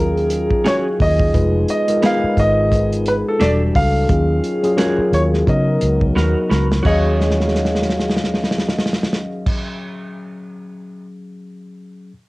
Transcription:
Already playing: fingered electric bass D#2, french horn section D#3 C#4 F4 G#4, tine electric piano F#3 C#4 F4 G#4 A#4, grand piano A#4
0.17 closed hi-hat
0.30 closed hi-hat
0.51 kick
0.65 clean electric guitar C#4 F#4 G#4, grand piano C#5, snare, closed hi-hat
1.00 fingered electric bass D#2, grand piano D#5, kick, open hi-hat
1.19 kick
1.33 fingered electric bass F1, french horn section F3 B3 D#4, tine electric piano G#3 D#4 F4 B4, kick, closed hi-hat
1.68 vibraphone D#5, grand piano D#5, closed hi-hat
1.88 tine electric piano G#3 D#4 F4 A#4, closed hi-hat
2.02 tine electric piano G#3 D#4 F4 B4, clean electric guitar B3 D#4 G#4, grand piano F5, snare, closed hi-hat
2.24 muted fingered electric bass stroke
2.37 fingered electric bass G#1, grand piano D#5, kick, closed hi-hat
2.72 kick, closed hi-hat
2.92 closed hi-hat
3.06 grand piano B4, closed hi-hat
3.28 grand piano A4
3.39 fingered electric bass E1, french horn section E3 G3 D4 A4, tine electric piano G3 D4 F#4 A4, clean electric guitar D4 G4 A4, grand piano D5, snare, closed hi-hat
3.75 fingered electric bass C#2, grand piano F5, kick, open hi-hat
4.08 fingered electric bass D#2, french horn section D#3 C#4 F4 G#4, tine electric piano F#3 C#4 F4 G#4, kick, closed hi-hat
4.44 closed hi-hat
4.63 tine electric piano F#3 C#4 F4 G#4, closed hi-hat
4.77 tine electric piano F#3 C#4 F4 A#4, clean electric guitar C#4 F#4 G#4, snare, closed hi-hat
4.98 muted fingered electric bass stroke
5.12 fingered electric bass D#2, grand piano C#5, closed hi-hat
5.34 snare
5.46 french horn section C#3 B3 D#4 F#4 A#4, fingered electric bass C#3, tine electric piano F#3 B3 D#4 A#4, grand piano D#5, kick, closed hi-hat
5.81 fingered electric bass C#2, closed hi-hat
6.01 kick
6.16 fingered electric bass D#2, clean electric guitar B3 F#4 A#4, snare
6.50 fingered electric bass C#2, clean electric guitar B3 F#4 A#4, snare
6.72 snare
6.82 fingered electric bass D#2, french horn section D#3 C#4 F#4 G#4 F5, tine electric piano F#3 C#4 F5, clean electric guitar F#4 G#4, vibraphone D#5, kick, crash
6.86 tine electric piano G#4, clean electric guitar C#5, grand piano D#5
7.21 snare
7.31 snare
7.40 snare
7.48 snare
7.55 snare
7.65 snare
7.75 snare
7.82 snare
7.89 snare
7.99 snare
8.10 snare
8.16 snare
8.24 snare
8.34 snare
8.44 snare
8.51 snare
8.58 snare
8.68 snare
8.78 snare
8.86 snare
8.93 snare
9.03 snare
9.13 snare
9.46 kick, crash

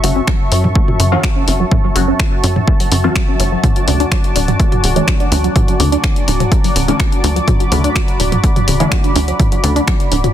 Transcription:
Already playing: synth drone F#2, analog synth pad F#4 E5 A5 C#6
0.03 analog synth bass F#1, synth arpeggio sound C#3, synth stab F#3 C#4 F#4, open hi-hat
0.16 synth arpeggio sound C#4
0.27 synth arpeggio sound F#3, finger snap, kick
0.52 analog synth bass F#2, synth arpeggio sound C#4, open hi-hat
0.64 synth arpeggio sound F#3, mid tom
0.75 synth arpeggio sound A3, kick
0.88 synth arpeggio sound F#3, mid tom
1.00 analog synth bass F#2, synth arpeggio sound C#3, open hi-hat
1.12 synth arpeggio sound E3, synth stab F#3 C#4 F#4
1.24 synth arpeggio sound F#3, finger snap, kick
1.36 synth arpeggio sound C#4
1.48 analog synth bass F#1, synth arpeggio sound C#4, open hi-hat
1.60 synth arpeggio sound F#3
1.72 synth arpeggio sound F#3, kick, mid tom
1.84 synth arpeggio sound F#3
1.96 analog synth bass F#1, synth arpeggio sound C#3, synth stab F#3 C#4 F#4, open hi-hat
2.08 synth arpeggio sound C#4
2.20 synth arpeggio sound F#3, finger snap, kick
2.44 analog synth bass F#2, synth arpeggio sound C#4, open hi-hat
2.56 synth arpeggio sound F#3, mid tom
2.68 synth arpeggio sound A3, kick
2.80 synth arpeggio sound F#3, open hi-hat
2.92 analog synth bass F#2, synth arpeggio sound C#3, open hi-hat
3.04 synth arpeggio sound E3, synth stab F#3 C#4 F#4
3.16 synth arpeggio sound F#3, finger snap, kick
3.28 synth arpeggio sound C#4
3.40 analog synth bass F#1, synth arpeggio sound C#4, open hi-hat
3.52 synth arpeggio sound F#3
3.64 synth arpeggio sound F#3, analog synth pad D5 D6, kick, closed hi-hat, mid tom
3.76 synth arpeggio sound F#3, closed hi-hat
3.88 analog synth bass D2, synth arpeggio sound C#3, synth stab D3 A3 D4, open hi-hat
4.00 synth arpeggio sound D4, closed hi-hat
4.12 synth arpeggio sound F#3, finger snap, kick, closed hi-hat
4.24 closed hi-hat
4.36 analog synth bass D1, synth arpeggio sound D4, open hi-hat
4.48 synth arpeggio sound F#3, closed hi-hat, mid tom
4.60 synth arpeggio sound A3, kick, closed hi-hat
4.72 synth arpeggio sound F#3, closed hi-hat, mid tom
4.84 analog synth bass D1, synth arpeggio sound C#3, open hi-hat
4.96 synth stab D3 A3 D4, synth arpeggio sound E3, closed hi-hat
5.08 synth arpeggio sound F#3, finger snap, kick, closed hi-hat
5.20 synth arpeggio sound D4, closed hi-hat
5.32 analog synth bass D2, synth arpeggio sound D4, open hi-hat
5.44 synth arpeggio sound F#3, closed hi-hat
5.56 synth arpeggio sound F#3, kick, closed hi-hat, mid tom
5.68 synth arpeggio sound F#3, closed hi-hat
5.80 analog synth bass D2, synth arpeggio sound C#3, synth stab D3 A3 D4, open hi-hat
5.92 synth arpeggio sound D4, closed hi-hat
6.04 synth arpeggio sound F#3, finger snap, kick, closed hi-hat
6.16 closed hi-hat
6.28 analog synth bass D1, synth arpeggio sound D4, open hi-hat
6.40 synth arpeggio sound F#3, closed hi-hat, mid tom
6.52 synth arpeggio sound A3, kick, closed hi-hat
6.64 synth arpeggio sound F#3, open hi-hat
6.76 analog synth bass D1, synth arpeggio sound C#3, open hi-hat
6.88 synth stab D3 A3 D4, synth arpeggio sound E3, closed hi-hat
7.00 synth arpeggio sound F#3, finger snap, kick, closed hi-hat
7.12 synth arpeggio sound D4, closed hi-hat
7.24 analog synth bass D2, synth arpeggio sound D4, open hi-hat
7.36 synth arpeggio sound F#3, closed hi-hat
7.48 synth arpeggio sound F#3, analog synth pad B5, kick, closed hi-hat, mid tom
7.60 synth arpeggio sound F#3, closed hi-hat
7.72 analog synth bass D2, synth arpeggio sound C#3, synth stab D3 A3 D4, open hi-hat
7.84 synth arpeggio sound D4, closed hi-hat
7.96 synth arpeggio sound F#3, finger snap, kick, closed hi-hat
8.08 closed hi-hat
8.20 analog synth bass D1, synth arpeggio sound D4, open hi-hat
8.32 synth arpeggio sound F#3, closed hi-hat, mid tom
8.44 synth arpeggio sound A3, kick, closed hi-hat
8.56 synth arpeggio sound F#3, closed hi-hat, mid tom
8.68 analog synth bass D1, synth arpeggio sound C#3, open hi-hat
8.80 synth stab D3 A3 D4, synth arpeggio sound E3, closed hi-hat
8.92 synth arpeggio sound F#3, finger snap, kick, closed hi-hat
9.04 synth arpeggio sound D4, closed hi-hat
9.16 analog synth bass D2, synth arpeggio sound D4, open hi-hat
9.28 synth arpeggio sound F#3, closed hi-hat
9.40 synth arpeggio sound F#3, kick, closed hi-hat, mid tom
9.52 synth arpeggio sound F#3, closed hi-hat
9.64 analog synth bass D2, synth arpeggio sound C#3, synth stab D3 A3 D4, open hi-hat
9.76 synth arpeggio sound D4, closed hi-hat
9.88 synth arpeggio sound F#3, finger snap, kick, closed hi-hat
10.00 closed hi-hat
10.12 analog synth bass D1, synth arpeggio sound D4, open hi-hat
10.24 synth arpeggio sound F#3, closed hi-hat, mid tom

